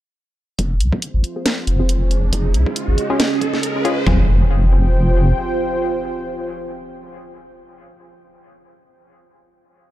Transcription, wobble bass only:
0.59 F1
0.80 C2
1.14 G#1
1.67 F1
2.33 F1
2.54 C2
2.88 G#1
4.07 F1

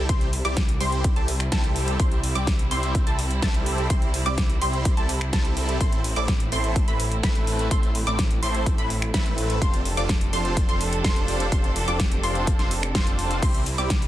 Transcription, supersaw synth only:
0.09 G3 C4 E4 G4 C5
0.45 G3 C4 E4 G4 D5
0.81 G3 C4 E4 G4 C5
1.16 G3 C4 E4 G4 A4
1.52 G3 C4 E4 G4 A4
2.00 G3 C4 E4 G4 C5
2.35 G3 C4 E4 G4 D5
2.71 G3 C4 E4 G4 C5
3.07 G3 C4 E4 G4 A4
3.43 G3 C4 E4 G4 A4
3.90 G3 C4 E4 G4 C5
4.26 G3 C4 E4 G4 D5
4.62 G3 C4 E4 G4 C5
4.97 G3 C4 E4 G4 A4
5.33 G3 C4 E4 G4 A4
5.81 A3 C4 E4 A4 C5
6.16 A3 C4 E4 A4 D5
6.52 A3 C4 E4 A4 C5
6.88 A3 C4 E4 A4 B4
7.24 A3 C4 E4 A4 B4
7.71 A3 C4 E4 A4 C5
8.07 A3 C4 E4 A4 D5
8.43 A3 C4 E4 A4 C5
8.78 A3 C4 E4 A4 B4
9.14 A3 C4 E4 A4 B4
9.62 C4 D4 F4 A4 C5
9.97 C4 D4 F4 A4 D5
10.33 C4 D4 F4 A4 C5
10.69 C4 D4 F4 A4 C5
11.04 C4 D4 F4 A4 C5
11.52 C4 D4 F4 A4 C5
11.88 C4 D4 F4 A4 D5
12.23 C4 D4 F4 A4 C5
12.59 C4 D4 F4 A4 C5
12.95 C4 D4 F4 A4 C5
13.43 G3 C4 E4 G4 C5
13.78 G3 C4 E4 G4 D5

